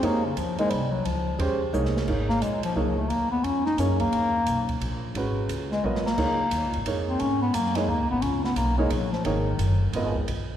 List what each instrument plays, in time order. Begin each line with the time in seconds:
Already playing: grand piano G#3 C#4 G4 C5
0.02 upright bass F2, grand piano A#3 D#4 G#4 C#5, bass clarinet A#3, ride
0.25 bass clarinet C#3
0.37 upright bass D#2, bass clarinet F3, hi-hat pedal, ride
0.58 bass clarinet G#3, grand piano A#3 D#4 G#4 C5, ride
0.70 upright bass C2, bass clarinet G3, ride
0.91 bass clarinet F#3
1.05 upright bass C#2, bass clarinet F3, ride
1.39 upright bass D#2, grand piano G#3 C#4 G4 C5, ride
1.73 upright bass C2, grand piano A#3 D#4 G#4 C#5, hi-hat pedal, high tom
1.85 snare
1.97 snare
2.07 upright bass G#1, grand piano A#3 D#4 G#4 C#5, kick, crash
2.29 bass clarinet A#3, snare
2.41 upright bass A#1, bass clarinet G#3, hi-hat pedal, ride
2.63 bass clarinet F3, ride
2.76 upright bass C#2, bass clarinet F#3, grand piano A#3 D#4 G#4 C#5
2.97 bass clarinet A3
3.09 upright bass D#2, bass clarinet A#3, ride
3.31 bass clarinet B3
3.44 upright bass F2, bass clarinet C#4, ride
3.66 bass clarinet D#4, snare
3.78 upright bass F#2, grand piano A#3 D#4 G#4 C#5, bass clarinet C#4, hi-hat pedal, ride
4.00 bass clarinet A#3, kick, ride
4.12 upright bass D#2, ride
4.46 upright bass B1, hi-hat pedal, ride
4.69 kick, ride
4.80 upright bass A#1, ride
5.15 upright bass G#1, grand piano G#3 C#4 F#4 B4, ride
5.49 upright bass C#2, hi-hat pedal, ride
5.72 bass clarinet G#3, snare
5.83 upright bass A#1, bass clarinet F#3, grand piano B3 F4 A#4 D#5, high tom
5.95 snare
6.05 bass clarinet A#3, snare
6.17 upright bass C#2, grand piano A#3 D#4 G#4 C#5, kick, crash
6.51 upright bass D#2, hi-hat pedal, ride
6.63 upright bass C#2
6.73 upright bass G#1, ride
6.86 upright bass F2, grand piano A#3 D#4 G#4 C#5, ride
7.08 bass clarinet C4
7.20 upright bass G#2, bass clarinet C#4, ride
7.42 bass clarinet B3
7.53 upright bass F#2, bass clarinet A#3, hi-hat pedal, ride
7.66 snare
7.75 bass clarinet G#3, grand piano A#3 D#4 G#4 C#5, snare, ride
7.88 upright bass D#2, bass clarinet A#3
7.99 upright bass C#2
8.10 upright bass G#1, bass clarinet B3
8.22 upright bass C#2, bass clarinet C#4, ride
8.44 bass clarinet B3, snare
8.56 upright bass B1, bass clarinet A#3, hi-hat pedal, ride
8.78 bass clarinet G#3, grand piano A#3 D#4 G#4 C#5
8.90 upright bass A#1, bass clarinet F#3, ride
9.12 bass clarinet F3, snare
9.25 upright bass G#1, bass clarinet D#3, grand piano A#3 D#4 G#4 C#5, ride
9.59 upright bass F#1, hi-hat pedal, ride
9.93 upright bass G#1, grand piano B3 F4 A#4 D#5, ride
10.15 kick
10.28 upright bass A#1, ride